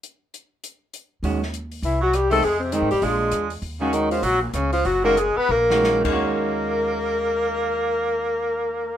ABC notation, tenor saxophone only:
X:1
M:4/4
L:1/8
Q:"Swing" 1/4=197
K:Ebm
V:1 name="Tenor saxophone" clef=bass
z8 | z4 =E, G, =G, =A, | A, =C, E, =G, A,3 z | z D, E, F, G, B,, D, F, |
G, B, A, C B,3 B,- | B,8- | B,8 |]